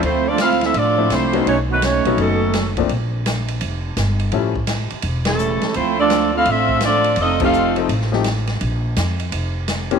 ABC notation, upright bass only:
X:1
M:4/4
L:1/8
Q:"Swing" 1/4=168
K:Dm
V:1 name="Upright bass" clef=bass
D,,4 A,,2 C,,2 | =B,,,3 _B,,, ^F,,,4 | B,,,4 F,,,2 G,,,2 | A,,,3 z E,,,3 z |
D,,4 A,,,4 | F,,,4 A,,,4 | B,,,2 F,,2 F,,,4 |]